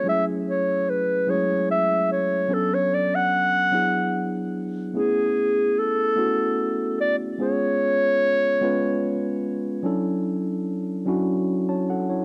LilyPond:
<<
  \new Staff \with { instrumentName = "Clarinet" } { \time 6/8 \key a \major \tempo 4. = 49 e''8 cis''8 b'8 cis''8 e''8 cis''8 | a'16 cis''16 d''16 fis''4. r8. | gis'4 a'4. d''8 | cis''2~ cis''8 r8 |
r2. | }
  \new Staff \with { instrumentName = "Tine electric piano" } { \time 6/8 \key a \major << { r2. | r2. | r2. | r2. |
r2 r16 <cis'' a''>16 <a' fis''>16 <e' cis''>16 | } \\ { <fis gis a cis' e' gis'>4 r8 <fis gis a cis' e' gis'>4 r8 | <fis b cis' d' a'>4 r8 <fis b d' e' gis'>4 r8 | <a b cis' e' gis'>4 r8 <a b cis' e' fis'>4 r8 | <gis b cis' eis' gis'>4 r8 <gis b cis' eis' b'>4 r8 |
<fis cis' d' e' a'>4 r8 <fis cis' d' e' fis'>4 r8 | } >> }
>>